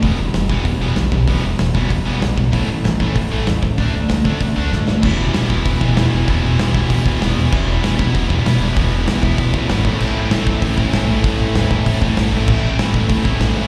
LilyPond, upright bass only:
\new Staff \with { instrumentName = "Upright bass" } { \clef bass \time 4/4 \key e \minor \tempo 4 = 193 e,,8 e,,8 e,,8 e,,8 e,,8 e,,8 b,,8 b,,8 | e,,8 e,,8 e,,8 e,,8 e,,8 e,,8 b,,8 b,,8 | a,,8 a,,8 a,,8 a,,8 a,,8 a,,8 e,8 e,8 | d,8 d,8 d,8 d,8 d,8 d,8 a,8 a,8 |
e,,8 e,,8 e,,8 e,,8 e,,8 e,,8 e,,8 e,,8 | e,,8 e,,8 b,,8 e,,8 e,,8 e,8 e,,8 e,,8 | e,,8 e,,8 e,,8 e,,8 e,,8 e,,8 e,,8 e,,8 | e,,8 e,,8 b,,8 e,,8 e,,8 e,8 gis,,8 a,,8 |
a,,8 a,,8 a,,8 a,,8 a,,8 a,,8 a,,8 a,,8 | a,,8 a,,8 e,8 a,,8 a,,8 a,8 a,,8 a,,8 | a,,8 a,,8 a,,8 a,,8 a,,8 a,,8 a,,8 a,,8 | }